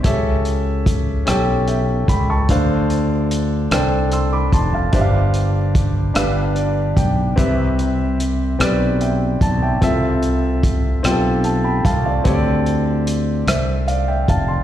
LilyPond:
<<
  \new Staff \with { instrumentName = "Grand piano" } { \time 6/8 \key d \dorian \tempo 4. = 49 << { r2 <e'' g''>8 <g'' b''>16 <a'' cis'''>16~ | <a'' cis'''>16 r4. r16 <c''' e'''>16 <b'' d'''>16 <a'' c'''>16 <f'' a''>16~ | <f'' a''>16 r4. r16 d''8 g''8 | r2 <e'' g''>8 a''16 <e'' g''>16~ |
<e'' g''>16 r4. r16 a''16 <g'' b''>16 <f'' a''>16 <d'' f''>16~ | <d'' f''>16 r4 r16 <c'' e''>8 <d'' f''>16 <e'' g''>16 <f'' a''>16 <a'' c'''>16 | } \\ { <cis' g' a' e''>4 r8 <cis' g' a' g''>4 r8 | <d' a' c'' f''>4 r8 <d' a' c'' g''>4 r8 | <d' g' c'' e'' f''>4 r8 <d' g' b' f''>4 r8 | <c' g' b' e''>4 r8 <c' g' b' d''>4 r8 |
<c' f' a' e''>4 r8 <c' f' g' a' g''>4 r8 | <c' g' a' des'' d''>4 r2 | } >> }
  \new Staff \with { instrumentName = "Grand piano" } { \clef bass \time 6/8 \key d \dorian cis4. r4. | d4. r4. | g,4. g,4. | c4. r4. |
c4. r4. | d4. r4. | }
  \new Staff \with { instrumentName = "Fretless electric bass" } { \clef bass \time 6/8 \key d \dorian cis,4. b,,4 cis,8 | d,4. c,4 f,,8 | g,,4. g,,4 b,,8 | c,4. b,,4 b,,8 |
c,4. b,,4 c,8 | d,4. c,4 f,,8 | }
  \new DrumStaff \with { instrumentName = "Drums" } \drummode { \time 6/8 <hh bd>8 hh8 <hh bd>8 <hh ss>8 hh8 <hh bd>8 | <hh bd>8 hh8 hh8 <hh ss>8 hh8 <hh bd>8 | <hh bd>8 hh8 <hh bd>8 <hh ss>8 hh8 <hh bd>8 | <hh bd>8 hh8 hh8 <hh ss>8 hh8 <hh bd>8 |
<hh bd>8 hh8 <hh bd>8 <hh ss>8 hh8 <hh bd>8 | <hh bd>8 hh8 hh8 <hh ss>8 hh8 <hh bd>8 | }
>>